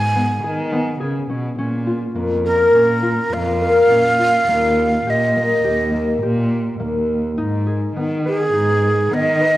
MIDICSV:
0, 0, Header, 1, 4, 480
1, 0, Start_track
1, 0, Tempo, 578035
1, 1327, Time_signature, 5, 2, 24, 8
1, 7949, End_track
2, 0, Start_track
2, 0, Title_t, "Flute"
2, 0, Program_c, 0, 73
2, 0, Note_on_c, 0, 80, 96
2, 800, Note_off_c, 0, 80, 0
2, 2042, Note_on_c, 0, 70, 83
2, 2770, Note_on_c, 0, 77, 105
2, 2782, Note_off_c, 0, 70, 0
2, 4234, Note_on_c, 0, 75, 76
2, 4246, Note_off_c, 0, 77, 0
2, 5181, Note_off_c, 0, 75, 0
2, 6874, Note_on_c, 0, 68, 86
2, 7588, Note_on_c, 0, 75, 104
2, 7601, Note_off_c, 0, 68, 0
2, 7949, Note_off_c, 0, 75, 0
2, 7949, End_track
3, 0, Start_track
3, 0, Title_t, "Harp"
3, 0, Program_c, 1, 46
3, 0, Note_on_c, 1, 59, 70
3, 0, Note_on_c, 1, 63, 70
3, 0, Note_on_c, 1, 66, 66
3, 0, Note_on_c, 1, 68, 72
3, 120, Note_off_c, 1, 59, 0
3, 123, Note_on_c, 1, 59, 69
3, 360, Note_off_c, 1, 68, 0
3, 363, Note_on_c, 1, 68, 66
3, 600, Note_off_c, 1, 59, 0
3, 603, Note_on_c, 1, 59, 75
3, 685, Note_off_c, 1, 63, 0
3, 707, Note_off_c, 1, 66, 0
3, 830, Note_off_c, 1, 68, 0
3, 833, Note_on_c, 1, 68, 71
3, 1077, Note_on_c, 1, 61, 63
3, 1313, Note_off_c, 1, 61, 0
3, 1316, Note_on_c, 1, 61, 80
3, 1551, Note_on_c, 1, 65, 64
3, 1789, Note_on_c, 1, 58, 67
3, 1839, Note_off_c, 1, 59, 0
3, 2031, Note_on_c, 1, 70, 56
3, 2273, Note_off_c, 1, 61, 0
3, 2277, Note_on_c, 1, 61, 69
3, 2510, Note_off_c, 1, 65, 0
3, 2513, Note_on_c, 1, 65, 68
3, 2721, Note_off_c, 1, 68, 0
3, 2759, Note_off_c, 1, 58, 0
3, 2762, Note_on_c, 1, 58, 63
3, 2995, Note_off_c, 1, 70, 0
3, 2999, Note_on_c, 1, 70, 65
3, 3232, Note_off_c, 1, 61, 0
3, 3236, Note_on_c, 1, 61, 67
3, 3476, Note_off_c, 1, 65, 0
3, 3480, Note_on_c, 1, 65, 60
3, 3718, Note_off_c, 1, 58, 0
3, 3722, Note_on_c, 1, 58, 78
3, 4207, Note_on_c, 1, 67, 70
3, 4450, Note_off_c, 1, 58, 0
3, 4453, Note_on_c, 1, 58, 66
3, 4682, Note_off_c, 1, 67, 0
3, 4685, Note_on_c, 1, 67, 69
3, 4760, Note_off_c, 1, 70, 0
3, 4926, Note_off_c, 1, 58, 0
3, 4929, Note_on_c, 1, 58, 62
3, 5167, Note_off_c, 1, 67, 0
3, 5170, Note_on_c, 1, 67, 63
3, 5574, Note_off_c, 1, 65, 0
3, 5641, Note_off_c, 1, 58, 0
3, 5642, Note_off_c, 1, 61, 0
3, 5644, Note_on_c, 1, 58, 69
3, 6126, Note_on_c, 1, 63, 92
3, 6364, Note_on_c, 1, 68, 66
3, 6414, Note_off_c, 1, 67, 0
3, 6612, Note_on_c, 1, 59, 67
3, 6662, Note_off_c, 1, 58, 0
3, 6855, Note_on_c, 1, 71, 60
3, 7083, Note_off_c, 1, 63, 0
3, 7086, Note_on_c, 1, 63, 81
3, 7328, Note_off_c, 1, 68, 0
3, 7331, Note_on_c, 1, 68, 63
3, 7561, Note_off_c, 1, 59, 0
3, 7564, Note_on_c, 1, 59, 66
3, 7805, Note_off_c, 1, 71, 0
3, 7808, Note_on_c, 1, 71, 65
3, 7949, Note_off_c, 1, 59, 0
3, 7949, Note_off_c, 1, 63, 0
3, 7949, Note_off_c, 1, 68, 0
3, 7949, Note_off_c, 1, 71, 0
3, 7949, End_track
4, 0, Start_track
4, 0, Title_t, "Cello"
4, 0, Program_c, 2, 42
4, 0, Note_on_c, 2, 44, 76
4, 310, Note_off_c, 2, 44, 0
4, 361, Note_on_c, 2, 51, 81
4, 795, Note_off_c, 2, 51, 0
4, 837, Note_on_c, 2, 49, 63
4, 1058, Note_off_c, 2, 49, 0
4, 1086, Note_on_c, 2, 47, 72
4, 1302, Note_off_c, 2, 47, 0
4, 1324, Note_on_c, 2, 46, 80
4, 1757, Note_off_c, 2, 46, 0
4, 1803, Note_on_c, 2, 41, 69
4, 2237, Note_off_c, 2, 41, 0
4, 2280, Note_on_c, 2, 46, 81
4, 2715, Note_off_c, 2, 46, 0
4, 2764, Note_on_c, 2, 41, 81
4, 3198, Note_off_c, 2, 41, 0
4, 3243, Note_on_c, 2, 46, 61
4, 3677, Note_off_c, 2, 46, 0
4, 3722, Note_on_c, 2, 39, 83
4, 4156, Note_off_c, 2, 39, 0
4, 4203, Note_on_c, 2, 46, 79
4, 4637, Note_off_c, 2, 46, 0
4, 4687, Note_on_c, 2, 39, 88
4, 5119, Note_off_c, 2, 39, 0
4, 5169, Note_on_c, 2, 46, 90
4, 5601, Note_off_c, 2, 46, 0
4, 5648, Note_on_c, 2, 39, 77
4, 6080, Note_off_c, 2, 39, 0
4, 6129, Note_on_c, 2, 44, 82
4, 6560, Note_off_c, 2, 44, 0
4, 6607, Note_on_c, 2, 51, 75
4, 7039, Note_off_c, 2, 51, 0
4, 7088, Note_on_c, 2, 44, 83
4, 7519, Note_off_c, 2, 44, 0
4, 7573, Note_on_c, 2, 51, 87
4, 7949, Note_off_c, 2, 51, 0
4, 7949, End_track
0, 0, End_of_file